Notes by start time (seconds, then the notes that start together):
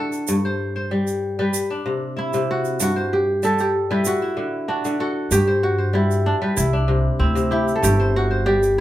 Already playing: D3 D4 E4 F#4 A4
0.12 shaker
0.27 G2, shaker
0.45 C5
0.76 C5
0.91 G3
1.07 shaker
1.39 G3 B4
1.54 shaker
1.70 D4
1.86 C3
2.17 E4
2.33 C3, shaker
2.51 F#4
2.65 shaker
2.80 G2 F#4, shaker
2.96 C5
3.13 G4
3.43 G3 A4, shaker
3.58 G4, shaker
3.91 G3 E4 B4
4.05 F#4, shaker
4.22 E4
4.37 D3
4.68 D4 F#4
4.85 D3, shaker
5.00 F#4 A4
5.31 G2 G4, shaker
5.47 C5
5.63 F#4
5.78 C5
5.93 G3 E4
6.11 shaker
6.26 D4
6.42 G3 B4
6.57 C2 E4, shaker
6.73 D4
6.88 C3
7.20 D2 C4 E4
7.35 C3, shaker
7.51 E4 G4
7.68 shaker
7.76 A4
7.82 G1 G2 G4, shaker
8.00 C5
8.16 F#4
8.31 C5
8.46 G3 G4
8.63 shaker